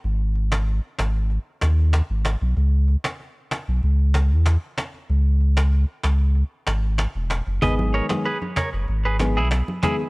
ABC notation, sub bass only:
X:1
M:4/4
L:1/16
Q:1/4=95
K:G#m
V:1 name="Sub bass" clef=bass
G,,,4- G,,, z G,,,3 z D,,3 G,,,2 B,,, | C,,3 z4 B,,, C,,3 E,,2 z3 | C,,4- C,, z C,,3 z G,,,3 E,,,2 F,,, | G,,,3 z4 F,,, G,,,3 B,,,2 z3 |]